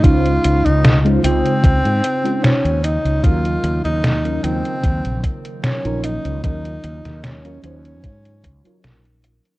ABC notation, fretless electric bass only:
X:1
M:4/4
L:1/16
Q:"Swing 16ths" 1/4=75
K:Ebdor
V:1 name="Fretless electric bass" clef=bass
D,,2 D,, D,,3 D,, z D,, A,, z3 E,,2 D,, | E,,2 E,, E,,3 E,, z E,, B,,, z3 B,,,2 D,, | E,,2 E,, E,,3 E,,2 A,,2 D,, z B,,,3 z |]